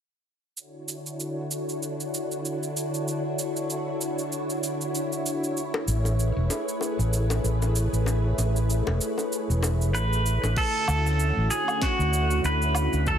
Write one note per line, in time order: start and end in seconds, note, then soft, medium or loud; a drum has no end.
0.57 5.53 D3 medium
0.57 5.53 D4 medium
0.57 10.53 E4 medium
0.57 5.53 F#4 medium
0.57 10.53 C#5 medium
0.57 cabasa soft
0.88 cabasa medium
1.06 cabasa soft
1.20 cabasa soft
1.51 cabasa medium
1.69 cabasa soft
1.83 cabasa soft
2.00 cabasa soft
2.14 cabasa medium
2.32 cabasa soft
2.45 cabasa soft
2.63 cabasa soft
2.77 cabasa medium
2.94 cabasa soft
3.08 cabasa soft
3.39 cabasa medium
3.57 cabasa soft
3.70 cabasa soft
4.01 cabasa medium
4.19 cabasa soft
4.32 cabasa soft
4.50 cabasa soft
4.64 cabasa medium
4.81 cabasa soft
4.95 cabasa soft
5.12 cabasa soft
5.26 cabasa medium
5.44 cabasa soft
5.55 10.52 A3 medium
5.55 10.52 G#4 medium
5.55 10.52 B4 medium
5.55 cabasa soft
5.74 high bongo medium
5.88 6.30 A1 medium
5.88 cabasa medium
6.05 high bongo soft
6.05 cabasa soft
6.20 cabasa soft
6.36 6.47 E1 medium
6.50 high bongo medium
6.50 cabasa medium
6.69 cabasa soft
6.81 high bongo soft
6.81 cabasa soft
6.99 7.39 A1 medium
6.99 cabasa soft
7.13 cabasa medium
7.30 high bongo medium
7.30 cabasa soft
7.44 7.87 A1 medium
7.44 cabasa soft
7.62 high bongo soft
7.62 cabasa soft
7.76 cabasa medium
7.93 8.33 A1 medium
7.93 cabasa soft
8.06 high bongo medium
8.06 cabasa soft
8.38 8.80 A1 medium
8.38 high bongo soft
8.38 cabasa medium
8.56 cabasa soft
8.70 cabasa soft
8.87 8.97 E1 medium
8.87 high bongo medium
9.01 cabasa medium
9.18 high bongo soft
9.18 cabasa soft
9.32 cabasa soft
9.50 9.95 E1 medium
9.50 cabasa soft
9.63 high bongo medium
9.63 cabasa medium
9.82 cabasa soft
9.94 10.37 A1 medium
9.94 10.53 B4 loud
9.94 high bongo soft
9.94 cabasa soft
10.13 cabasa soft
10.26 cabasa medium
10.43 10.54 A1 medium
10.43 high bongo medium
10.43 cabasa soft
10.56 13.18 D3 medium
10.56 13.18 A3 medium
10.56 13.18 C#4 medium
10.56 13.18 E4 medium
10.56 13.18 F#4 medium
10.56 11.50 A4 medium
10.56 kick loud
10.56 crash medium
10.56 cabasa soft
10.88 11.30 D2 medium
10.88 cabasa medium
10.88 low woodblock medium
11.06 cabasa soft
11.20 cabasa soft
11.37 11.47 A1 medium
11.51 11.83 G#4 medium
11.51 cabasa medium
11.68 cabasa soft
11.68 low woodblock medium
11.82 12.41 F#4 medium
11.82 kick medium
11.82 snare medium
11.82 cabasa soft
11.99 12.39 D2 medium
11.99 cabasa soft
12.13 cabasa medium
12.31 cabasa soft
12.44 12.86 D2 loud
12.44 13.03 B4 medium
12.44 cabasa soft
12.62 cabasa soft
12.75 cabasa medium
12.75 low woodblock medium
12.93 13.18 D2 medium
12.93 cabasa soft
13.07 13.18 A4 medium
13.07 kick loud
13.07 cabasa soft